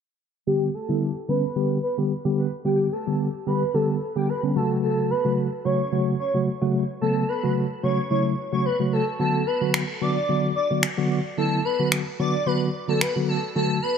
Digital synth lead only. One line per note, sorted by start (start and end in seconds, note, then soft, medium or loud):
0.47 0.69 G4 loud
0.74 0.96 A4 medium
1.29 1.68 B4 medium
1.83 1.95 B4 medium
2.65 2.87 G4 loud
2.92 3.15 A4 medium
3.47 3.69 B4 medium
3.74 3.86 A4 medium
4.16 4.26 G4 medium
4.29 4.41 B4 medium
4.56 4.68 A4 medium
4.83 5.05 A4 medium
5.10 5.33 B4 medium
5.65 6.04 C#5 medium
6.20 6.31 C#5 medium
7.01 7.24 A4 loud
7.29 7.51 B4 medium
7.83 8.05 C#5 medium
8.10 8.22 C#5 medium
8.52 8.63 C#5 medium
8.65 8.77 B4 medium
8.93 9.04 A4 medium
9.19 9.42 A4 loud
9.47 9.69 B4 medium
10.01 10.40 D5 medium
10.56 10.68 D5 medium
11.37 11.60 A4 loud
11.65 11.87 B4 medium
12.19 12.42 D5 medium
12.46 12.58 B4 medium
12.88 12.99 A4 medium
13.01 13.13 B4 medium
13.28 13.40 A4 medium
13.55 13.78 A4 loud
13.82 13.98 B4 medium